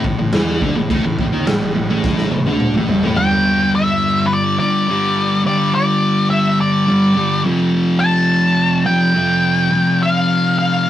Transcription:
0.04 0.18 A1 medium
0.04 0.18 A2 medium
0.04 kick loud
0.18 0.32 A1 medium
0.18 0.33 A2 medium
0.32 0.60 E2 medium
0.32 0.62 E3 loud
0.32 0.62 E4 loud
0.32 snare loud
0.32 crash medium
0.61 0.74 D2 loud
0.61 0.75 D3 loud
0.61 0.75 D4 loud
0.61 kick medium
0.76 0.89 A1 medium
0.76 0.89 A2 medium
0.90 1.03 A1 medium
0.90 1.04 A2 loud
0.90 1.04 A3 loud
0.90 kick loud
0.90 crash medium
1.05 1.18 A1 medium
1.05 1.19 A2 medium
1.19 1.32 A1 medium
1.19 1.32 A2 medium
1.19 kick medium
1.33 1.46 D#2 loud
1.33 1.46 D#3 loud
1.33 1.47 D#4 loud
1.47 1.61 A1 medium
1.47 1.61 A2 medium
1.47 snare loud
1.47 crash medium
1.62 1.75 A1 medium
1.62 1.75 A2 medium
1.76 1.90 A1 medium
1.76 1.89 A2 medium
1.90 2.30 A1 loud
1.90 2.31 A2 medium
1.90 2.32 A3 loud
2.04 kick loud
2.04 snare medium
2.18 snare medium
2.32 2.46 A1 medium
2.32 2.46 A2 medium
2.32 high tom medium
2.46 2.74 D2 loud
2.46 2.74 D3 medium
2.46 2.75 D4 loud
2.46 high tom medium
2.60 mid tom medium
2.74 2.89 A1 loud
2.74 2.89 A2 medium
2.74 2.89 A3 loud
2.74 mid tom medium
2.88 3.03 G1 loud
2.88 3.02 G2 loud
2.88 3.03 G3 loud
2.88 floor tom loud
3.03 3.17 A1 medium
3.03 3.17 A2 medium
3.03 3.17 A3 medium
3.03 floor tom loud
3.17 4.58 G2 loud
3.17 4.59 D3 loud
3.17 4.57 G3 loud
3.17 3.70 G5 loud
3.75 4.27 E5 medium
4.26 4.33 B4 medium
4.33 4.58 D5 medium
4.58 4.86 G2 medium
4.58 4.87 D3 medium
4.58 4.86 G3 medium
4.58 5.41 D5 medium
4.88 5.43 G2 medium
4.88 5.44 D3 medium
4.88 5.45 G3 medium
5.44 6.85 G2 loud
5.44 6.86 D3 loud
5.44 6.86 G3 loud
5.44 5.74 D5 loud
5.75 6.30 D5 medium
6.30 6.60 E5 loud
6.61 7.41 D5 medium
6.87 7.13 G2 medium
6.87 7.15 D3 medium
6.87 7.14 G3 medium
7.15 7.42 G2 medium
7.15 7.43 D3 medium
7.15 7.44 G3 medium
7.44 8.84 F2 loud
7.44 8.86 C3 loud
7.44 8.86 F3 loud
8.00 8.86 A5 loud
8.86 9.13 F2 medium
8.86 9.14 C3 medium
8.86 9.13 F3 medium
8.86 10.04 G5 loud
9.14 9.70 F2 medium
9.14 9.71 C3 medium
9.14 9.70 F3 loud
9.71 10.90 F2 loud
9.71 10.90 C3 loud
9.71 10.90 F3 loud
10.03 10.57 F5 loud
10.59 10.90 F5 medium

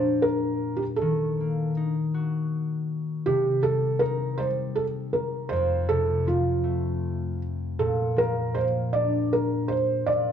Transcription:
0.00 1.06 A#2 medium
0.00 1.06 F3 soft
0.00 1.40 A#3 soft
0.00 0.58 C4 soft
0.00 1.07 D4 soft
0.00 0.26 C5 medium
0.22 0.82 A#4 medium
0.77 0.82 G4 medium
0.96 1.70 A4 medium
1.01 3.31 D#3 medium
1.40 4.62 A#3 soft
1.77 4.01 D#4 medium
2.14 3.69 F#4 soft
3.26 5.57 C3 medium
3.26 3.61 G4 medium
3.63 4.38 G3 soft
3.63 4.02 A4 medium
3.99 6.72 D#4 medium
3.99 4.39 A#4 medium
4.38 5.57 G3 medium
4.38 4.46 C5 medium
4.75 4.84 A4 medium
5.13 5.52 A#4 medium
5.49 7.85 F2 medium
5.49 5.85 C5 medium
5.89 7.85 C3 soft
5.89 6.24 A4 medium
6.27 7.85 F3 soft
6.27 7.38 F4 medium
6.64 7.85 A3 soft
7.79 10.06 A#2 medium
7.79 8.19 A4 medium
8.16 10.13 F3 soft
8.16 8.57 A#4 medium
8.55 10.32 A#3 soft
8.55 8.63 C5 medium
8.93 10.32 D4 medium
8.93 9.33 D5 medium
9.33 9.72 A#4 medium
9.68 10.08 C5 medium
10.06 10.32 A#2 medium
10.06 10.32 D5 medium

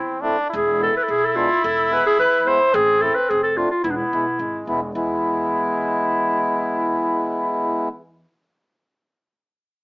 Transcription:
0.00 0.31 E2 medium
0.00 0.23 C4 medium
0.00 0.25 E4 medium
0.21 0.37 A3 medium
0.21 0.37 C4 medium
0.21 0.50 D4 loud
0.21 0.37 E4 medium
0.50 0.86 E1 loud
0.50 2.75 E4 loud
0.55 0.79 G#4 medium
0.79 0.93 G#3 medium
0.79 0.93 B3 medium
0.79 0.93 E4 medium
0.79 0.94 A4 loud
0.97 1.05 B4 medium
1.03 1.11 A4 medium
1.08 1.41 B1 medium
1.08 1.26 G#4 loud
1.24 1.37 A4 medium
1.35 1.49 G#3 medium
1.35 1.49 B3 medium
1.35 1.49 D4 medium
1.35 1.63 F4 loud
1.64 1.97 E1 loud
1.64 1.94 A4 medium
1.89 2.04 G#3 medium
1.89 2.04 B3 medium
1.89 2.04 E4 medium
1.89 2.05 B4 loud
2.06 2.18 G#4 loud
2.19 2.52 E2 medium
2.19 2.48 B4 loud
2.45 2.59 G#3 medium
2.45 2.59 B3 medium
2.45 2.59 E4 medium
2.45 2.76 C5 loud
2.73 3.07 A1 loud
2.73 3.60 C4 loud
2.73 3.03 G#4 loud
3.01 3.15 A3 medium
3.01 3.15 C4 medium
3.01 3.15 E4 medium
3.01 3.16 A4 loud
3.15 3.31 B4 loud
3.30 3.63 F1 loud
3.30 3.42 G#4 medium
3.43 3.59 A4 loud
3.56 3.70 A3 medium
3.56 3.70 C4 medium
3.56 3.70 D4 medium
3.56 3.70 F4 medium
3.70 3.83 F4 medium
3.84 4.00 E1 loud
3.84 4.42 B3 medium
3.84 3.92 E4 medium
3.91 3.97 D4 medium
3.96 4.66 E4 medium
4.12 4.37 B1 medium
4.12 4.25 G#3 medium
4.12 4.25 B3 medium
4.12 4.26 E4 medium
4.39 4.64 G#1 medium
4.39 4.94 G#3 medium
4.67 4.91 E1 medium
4.67 4.80 G#3 medium
4.67 4.80 B3 medium
4.67 4.80 E4 loud
4.94 8.23 E2 medium
4.94 7.88 G#3 medium
4.94 7.89 B3 medium
4.94 7.88 E4 medium
4.94 7.89 E4 medium

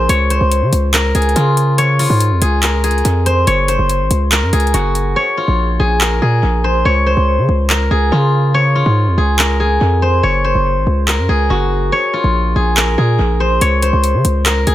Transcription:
0.00 1.14 F4 medium
0.00 1.14 G#4 medium
0.00 0.93 A#4 medium
0.00 0.15 C5 medium
0.09 0.40 C#2 loud
0.09 0.36 C#5 loud
0.09 closed hi-hat medium
0.30 1.84 C5 medium
0.30 closed hi-hat medium
0.41 0.63 C#2 loud
0.52 closed hi-hat medium
0.62 0.72 C#3 loud
0.73 1.13 C#2 loud
0.73 closed hi-hat medium
0.94 2.62 A#4 medium
0.94 clap loud
0.94 closed hi-hat medium
1.15 1.35 C#2 loud
1.15 2.41 G#4 medium
1.15 closed hi-hat medium
1.22 closed hi-hat medium
1.29 closed hi-hat soft
1.36 2.07 C#3 loud
1.36 1.99 F4 medium
1.36 closed hi-hat medium
1.57 closed hi-hat medium
1.78 3.32 C#5 loud
1.78 closed hi-hat medium
1.99 4.52 F4 medium
1.99 open hi-hat medium
2.10 2.33 G#2 loud
2.20 closed hi-hat medium
2.31 2.41 F2 loud
2.42 3.02 C#2 loud
2.42 2.83 G#4 medium
2.42 closed hi-hat medium
2.63 4.31 A#4 medium
2.63 clap loud
2.63 closed hi-hat medium
2.84 4.52 G#4 medium
2.84 closed hi-hat medium
2.91 closed hi-hat medium
2.98 closed hi-hat soft
3.05 3.46 F2 loud
3.05 closed hi-hat medium
3.26 3.53 C5 medium
3.26 closed hi-hat medium
3.47 3.78 F#1 loud
3.47 3.74 C#5 loud
3.47 closed hi-hat medium
3.68 5.22 C5 medium
3.68 closed hi-hat medium
3.79 4.02 F#1 loud
3.89 closed hi-hat medium
4.00 4.10 G#1 loud
4.11 4.44 C#2 loud
4.11 closed hi-hat medium
4.32 6.00 A#4 medium
4.32 clap loud
4.32 closed hi-hat medium
4.42 4.52 F#2 loud
4.53 4.73 C#2 loud
4.53 5.79 G#4 medium
4.53 closed hi-hat medium
4.60 closed hi-hat medium
4.67 closed hi-hat soft
4.74 5.15 F#1 loud
4.74 5.43 F#4 medium
4.74 closed hi-hat medium
4.95 closed hi-hat medium
5.16 6.70 C#5 loud
5.37 7.90 F4 medium
5.48 5.78 A#1 loud
5.80 6.20 A#1 loud
5.80 6.21 G#4 medium
6.01 7.69 A#4 medium
6.01 clap loud
6.22 6.42 A#2 loud
6.22 7.90 G#4 medium
6.43 6.84 A#1 loud
6.64 6.91 C5 medium
6.85 7.16 C#2 loud
6.85 7.12 C#5 loud
7.06 8.60 C5 medium
7.17 7.40 C#2 loud
7.38 7.48 C#3 loud
7.49 7.89 C#2 loud
7.70 9.38 A#4 medium
7.70 clap loud
7.91 8.11 C#2 loud
7.91 9.17 G#4 medium
8.12 8.83 C#3 loud
8.12 8.75 F4 medium
8.54 10.08 C#5 loud
8.75 11.28 F4 medium
8.86 9.09 G#2 loud
9.07 9.17 F2 loud
9.18 9.78 C#2 loud
9.18 9.59 G#4 medium
9.39 11.07 A#4 medium
9.39 clap loud
9.60 11.29 G#4 medium
9.81 10.22 F2 loud
10.02 10.29 C5 medium
10.23 10.54 F#1 loud
10.23 10.50 C#5 loud
10.44 11.98 C5 medium
10.55 10.78 F#1 loud
10.76 10.86 G#1 loud
10.87 11.20 C#2 loud
11.08 12.76 A#4 medium
11.08 clap loud
11.18 11.28 F#2 loud
11.29 11.49 C#2 loud
11.29 12.55 G#4 medium
11.50 11.91 F#1 loud
11.50 12.19 F#4 medium
11.92 13.46 C#5 loud
12.13 14.66 F4 medium
12.24 12.54 A#1 loud
12.56 12.96 A#1 loud
12.56 12.98 G#4 medium
12.77 14.45 A#4 medium
12.77 clap loud
12.98 13.18 A#2 loud
12.98 14.66 G#4 medium
13.19 13.60 A#1 loud
13.40 13.67 C5 medium
13.61 13.92 C#2 loud
13.61 13.88 C#5 loud
13.61 closed hi-hat medium
13.82 14.75 C5 medium
13.82 closed hi-hat medium
13.93 14.16 C#2 loud
14.04 closed hi-hat medium
14.14 14.24 C#3 loud
14.25 14.65 C#2 loud
14.25 closed hi-hat medium
14.46 14.75 A#4 medium
14.46 clap loud
14.46 closed hi-hat medium
14.67 14.75 C#2 loud
14.67 14.75 G#4 medium
14.67 closed hi-hat medium

